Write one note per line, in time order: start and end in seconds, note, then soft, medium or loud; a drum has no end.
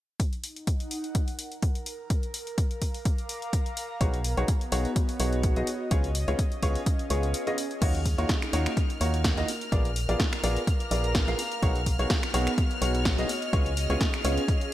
0.20 1.87 D#4 medium
0.20 kick loud
0.20 closed hi-hat medium
0.33 closed hi-hat soft
0.44 open hi-hat medium
0.54 1.87 F#5 medium
0.54 closed hi-hat soft
0.67 kick loud
0.67 closed hi-hat medium
0.80 closed hi-hat soft
0.86 4.77 A#4 medium
0.91 open hi-hat medium
1.04 closed hi-hat soft
1.15 kick loud
1.15 closed hi-hat medium
1.28 open hi-hat medium
1.39 open hi-hat medium
1.52 closed hi-hat soft
1.62 kick loud
1.62 closed hi-hat medium
1.75 closed hi-hat soft
1.86 open hi-hat medium
2.10 kick loud
2.10 closed hi-hat medium
2.23 closed hi-hat soft
2.31 4.71 F5 medium
2.31 open hi-hat loud
2.40 4.77 A#5 medium
2.47 closed hi-hat soft
2.58 kick loud
2.58 closed hi-hat medium
2.71 closed hi-hat soft
2.82 4.01 D6 medium
2.82 kick medium
2.82 open hi-hat loud
2.94 open hi-hat medium
3.05 kick loud
3.05 closed hi-hat medium
3.18 closed hi-hat soft
3.29 open hi-hat loud
3.42 closed hi-hat soft
3.53 kick loud
3.53 closed hi-hat medium
3.66 closed hi-hat soft
3.77 open hi-hat loud
4.01 4.35 B1 medium
4.01 4.17 B3 medium
4.01 6.68 B3 medium
4.01 4.17 D#4 medium
4.01 4.17 F#4 medium
4.01 4.17 G#4 medium
4.01 4.17 C#5 medium
4.01 kick loud
4.01 closed hi-hat medium
4.14 closed hi-hat soft
4.24 open hi-hat loud
4.37 4.44 B1 medium
4.37 4.46 B3 medium
4.37 4.46 D#4 medium
4.37 4.46 F#4 medium
4.37 4.46 G#4 medium
4.37 4.46 C#5 medium
4.37 closed hi-hat soft
4.42 5.91 F#4 medium
4.48 kick loud
4.48 closed hi-hat medium
4.61 closed hi-hat soft
4.72 4.86 B1 medium
4.72 4.88 B3 medium
4.72 4.88 D#4 medium
4.72 4.88 F#4 medium
4.72 4.88 G#4 medium
4.72 4.88 C#5 loud
4.72 6.68 C#5 medium
4.72 open hi-hat loud
4.85 8.49 D#5 medium
4.85 closed hi-hat soft
4.96 kick loud
4.96 closed hi-hat medium
5.09 open hi-hat medium
5.20 5.54 B1 medium
5.20 5.53 B3 medium
5.20 5.53 D#4 medium
5.20 5.53 F#4 medium
5.20 5.53 G#4 medium
5.20 5.53 C#5 medium
5.20 open hi-hat loud
5.33 closed hi-hat soft
5.43 kick loud
5.43 closed hi-hat medium
5.56 5.63 B1 loud
5.56 5.65 B3 medium
5.56 5.65 D#4 medium
5.56 5.65 F#4 medium
5.56 5.65 G#4 medium
5.56 5.65 D#5 medium
5.56 closed hi-hat soft
5.67 open hi-hat loud
5.91 6.25 C#2 medium
5.91 6.07 B3 medium
5.91 8.49 C#4 medium
5.91 6.07 C#4 medium
5.91 6.07 F4 medium
5.91 6.07 G#4 medium
5.91 6.07 C#5 medium
5.91 kick loud
5.91 closed hi-hat medium
6.04 closed hi-hat soft
6.15 open hi-hat loud
6.19 8.49 G#4 medium
6.28 6.35 C#2 medium
6.28 6.37 B3 medium
6.28 6.37 C#4 medium
6.28 6.37 F4 medium
6.28 6.37 G#4 medium
6.28 6.37 C#5 medium
6.28 closed hi-hat soft
6.37 7.82 F5 medium
6.37 kick loud
6.37 closed hi-hat medium
6.52 closed hi-hat soft
6.63 6.77 C#2 medium
6.63 6.79 B3 medium
6.63 6.79 C#4 medium
6.63 6.79 F4 medium
6.63 6.79 G#4 medium
6.63 6.79 C#5 loud
6.63 kick medium
6.63 open hi-hat loud
6.75 open hi-hat medium
6.86 kick loud
6.86 closed hi-hat medium
6.99 closed hi-hat soft
7.10 7.34 C#2 medium
7.10 7.44 B3 medium
7.10 7.44 C#4 medium
7.10 7.44 F4 medium
7.10 7.44 G#4 medium
7.10 7.44 C#5 medium
7.10 open hi-hat loud
7.23 closed hi-hat soft
7.34 closed hi-hat medium
7.47 7.56 B3 medium
7.47 7.56 C#4 medium
7.47 7.56 F4 medium
7.47 7.56 G#4 medium
7.47 7.56 D#5 medium
7.47 closed hi-hat soft
7.58 open hi-hat loud
7.71 closed hi-hat soft
7.82 8.16 D#2 medium
7.82 7.98 A#3 medium
7.82 9.48 D#4 loud
7.82 7.98 D#4 medium
7.82 7.98 F4 medium
7.82 7.98 F#4 medium
7.82 7.98 C#5 medium
7.82 14.73 F6 medium
7.82 kick loud
7.82 closed hi-hat medium
7.82 crash medium
7.95 closed hi-hat soft
8.05 kick medium
8.05 open hi-hat loud
8.18 8.25 D#2 medium
8.18 8.27 A#3 medium
8.18 8.27 D#4 medium
8.18 8.27 F4 medium
8.18 8.27 F#4 medium
8.18 8.27 C#5 medium
8.18 closed hi-hat soft
8.29 kick loud
8.29 snare loud
8.29 closed hi-hat medium
8.42 finger snap medium
8.42 closed hi-hat soft
8.48 12.39 A#4 medium
8.53 8.67 D#2 medium
8.53 8.69 A#3 medium
8.53 8.69 D#4 medium
8.53 8.69 F4 medium
8.53 8.69 F#4 medium
8.53 8.69 C#5 medium
8.53 open hi-hat loud
8.66 finger snap medium
8.66 closed hi-hat soft
8.77 kick loud
8.77 closed hi-hat medium
8.90 closed hi-hat soft
9.01 9.35 D#2 medium
9.01 9.34 A#3 medium
9.01 9.34 D#4 medium
9.01 9.34 F4 medium
9.01 9.34 F#4 medium
9.01 9.34 C#5 medium
9.01 open hi-hat medium
9.14 closed hi-hat soft
9.24 kick loud
9.24 snare loud
9.24 closed hi-hat medium
9.37 9.44 D#2 loud
9.37 9.46 A#3 medium
9.37 9.46 D#4 medium
9.37 9.46 F4 medium
9.37 9.46 F#4 medium
9.37 9.46 D#5 medium
9.37 closed hi-hat soft
9.48 open hi-hat loud
9.61 closed hi-hat soft
9.72 10.06 A#1 medium
9.72 9.88 B3 medium
9.72 9.88 F4 medium
9.72 9.88 G#4 medium
9.72 9.88 A#4 medium
9.72 9.88 D5 medium
9.72 kick loud
9.72 closed hi-hat medium
9.85 12.39 A#5 medium
9.85 closed hi-hat soft
9.92 12.39 F5 medium
9.96 open hi-hat loud
10.09 10.16 A#1 medium
10.09 10.18 B3 medium
10.09 10.18 F4 medium
10.09 10.18 G#4 medium
10.09 10.18 A#4 medium
10.09 10.18 D5 medium
10.09 closed hi-hat soft
10.20 kick loud
10.20 snare loud
10.20 closed hi-hat medium
10.33 finger snap medium
10.33 closed hi-hat soft
10.44 10.58 A#1 medium
10.44 10.60 B3 medium
10.44 10.60 F4 medium
10.44 10.60 G#4 medium
10.44 10.60 A#4 medium
10.44 10.60 D5 loud
10.44 11.63 D6 medium
10.44 open hi-hat loud
10.56 closed hi-hat soft
10.67 kick loud
10.67 closed hi-hat medium
10.80 closed hi-hat soft
10.91 11.25 A#1 medium
10.91 11.25 B3 medium
10.91 11.25 F4 medium
10.91 11.25 G#4 medium
10.91 11.25 A#4 medium
10.91 11.25 D5 medium
10.91 open hi-hat loud
11.04 closed hi-hat soft
11.15 kick loud
11.15 snare loud
11.15 closed hi-hat medium
11.28 11.35 A#1 medium
11.28 11.37 B3 medium
11.28 11.37 F4 medium
11.28 11.37 G#4 medium
11.28 11.37 A#4 medium
11.28 11.37 F5 medium
11.28 closed hi-hat soft
11.39 open hi-hat loud
11.52 closed hi-hat soft
11.63 11.97 B1 loud
11.63 11.79 B3 medium
11.63 14.30 B3 medium
11.63 11.79 D#4 medium
11.63 11.79 F#4 medium
11.63 11.79 G#4 medium
11.63 11.79 C#5 medium
11.63 kick loud
11.63 closed hi-hat medium
11.76 closed hi-hat soft
11.86 kick medium
11.86 open hi-hat loud
11.99 12.06 B1 medium
11.99 12.08 B3 medium
11.99 12.08 D#4 medium
11.99 12.08 F#4 medium
11.99 12.08 G#4 medium
11.99 12.08 C#5 medium
11.99 closed hi-hat soft
12.09 13.53 F#4 medium
12.09 kick loud
12.09 snare loud
12.09 closed hi-hat medium
12.18 14.30 C#5 medium
12.23 finger snap medium
12.23 closed hi-hat soft
12.34 12.48 B1 medium
12.34 12.50 B3 medium
12.34 12.50 D#4 medium
12.34 12.50 F#4 medium
12.34 12.50 G#4 medium
12.34 12.50 C#5 loud
12.34 open hi-hat loud
12.47 14.73 D#5 medium
12.47 finger snap medium
12.47 closed hi-hat soft
12.58 kick loud
12.58 closed hi-hat medium
12.71 closed hi-hat soft
12.82 13.16 B1 medium
12.82 13.15 B3 medium
12.82 13.15 D#4 medium
12.82 13.15 F#4 medium
12.82 13.15 G#4 medium
12.82 13.15 C#5 medium
12.82 open hi-hat loud
12.95 closed hi-hat soft
13.05 kick loud
13.05 snare loud
13.05 closed hi-hat medium
13.18 13.25 B1 medium
13.18 13.27 B3 medium
13.18 13.27 D#4 medium
13.18 13.27 F#4 medium
13.18 13.27 G#4 medium
13.18 13.27 D#5 medium
13.18 closed hi-hat soft
13.29 open hi-hat loud
13.42 closed hi-hat soft
13.53 13.87 C#2 medium
13.53 13.69 B3 medium
13.53 14.73 C#4 medium
13.53 13.69 C#4 medium
13.53 13.69 F4 medium
13.53 13.69 G#4 medium
13.53 13.69 C#5 medium
13.53 kick loud
13.53 closed hi-hat medium
13.65 14.73 G#4 loud
13.65 closed hi-hat soft
13.77 open hi-hat loud
13.90 13.96 C#2 loud
13.90 13.99 B3 medium
13.90 13.99 C#4 medium
13.90 13.99 F4 medium
13.90 13.99 G#4 medium
13.90 13.99 C#5 medium
13.90 closed hi-hat soft
14.01 kick loud
14.01 snare loud
14.01 closed hi-hat medium
14.14 finger snap medium
14.14 closed hi-hat soft
14.24 14.39 C#2 medium
14.24 14.41 B3 medium
14.24 14.41 C#4 medium
14.24 14.41 F4 medium
14.24 14.41 G#4 medium
14.24 14.41 C#5 loud
14.24 open hi-hat loud
14.38 14.73 F5 medium
14.38 closed hi-hat soft
14.48 kick loud
14.48 closed hi-hat medium
14.61 closed hi-hat soft